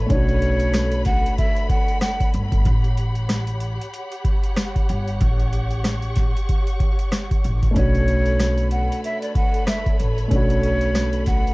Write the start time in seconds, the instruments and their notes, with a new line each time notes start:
Already playing: upright bass A1, string section A4 B4 C#5 B5
0.06 grand piano A3 C#4, kick, closed hi-hat
0.11 upright bass B1, grand piano D4 F#4, flute C#5
0.29 closed hi-hat
0.42 closed hi-hat
0.60 closed hi-hat
0.74 cross-stick, snare, closed hi-hat, tambourine
0.92 closed hi-hat
1.05 flute F#5, kick, snare, closed hi-hat
1.26 closed hi-hat
1.38 flute E5, kick, closed hi-hat
1.56 closed hi-hat
1.69 flute F#5, kick, closed hi-hat
1.88 closed hi-hat
2.01 flute F#5, cross-stick, snare, closed hi-hat, tambourine
2.20 kick, closed hi-hat
2.34 upright bass G1, closed hi-hat
2.52 kick, closed hi-hat
2.65 upright bass A1, string section G4 C#5 F#5, kick, closed hi-hat
2.84 closed hi-hat
2.97 closed hi-hat
3.15 closed hi-hat
3.29 cross-stick, snare, closed hi-hat, tambourine
3.47 closed hi-hat
3.60 closed hi-hat
3.81 closed hi-hat
3.94 closed hi-hat
4.12 closed hi-hat
4.25 kick, closed hi-hat
4.44 closed hi-hat
4.56 cross-stick, snare, closed hi-hat, tambourine
4.76 kick, closed hi-hat
4.89 upright bass G1, closed hi-hat
5.07 closed hi-hat
5.21 upright bass A1, string section C#6, kick, closed hi-hat
5.39 closed hi-hat
5.53 closed hi-hat
5.71 closed hi-hat
5.84 cross-stick, snare, closed hi-hat, tambourine
6.02 closed hi-hat
6.16 kick, snare, closed hi-hat
6.37 closed hi-hat
6.49 kick, closed hi-hat
6.67 closed hi-hat
6.80 kick, closed hi-hat
6.99 closed hi-hat
7.12 cross-stick, snare, closed hi-hat, tambourine
7.31 kick, closed hi-hat
7.44 upright bass A1, closed hi-hat
7.63 kick, closed hi-hat
7.71 grand piano A3 C#4
7.76 upright bass B1, grand piano D4 F#4, string section A4 B4 C#5 B5, flute C#5, kick, closed hi-hat
7.95 closed hi-hat
8.08 closed hi-hat
8.26 closed hi-hat
8.39 cross-stick, snare, closed hi-hat, tambourine
8.58 closed hi-hat
8.71 flute F#5, closed hi-hat
8.92 closed hi-hat
9.04 flute E5, closed hi-hat
9.21 flute D5, closed hi-hat
9.35 flute F#5, kick, closed hi-hat
9.54 closed hi-hat
9.67 flute E5, cross-stick, snare, closed hi-hat, tambourine
9.86 kick, closed hi-hat
10.00 upright bass A1, closed hi-hat
10.18 closed hi-hat
10.27 grand piano A3 C#4, closed hi-hat
10.31 upright bass B1, grand piano D4 F#4, flute C#5, kick
10.50 closed hi-hat
10.63 closed hi-hat
10.81 closed hi-hat
10.95 cross-stick, snare, closed hi-hat, tambourine
11.13 closed hi-hat
11.26 flute F#5, kick, snare, closed hi-hat
11.47 closed hi-hat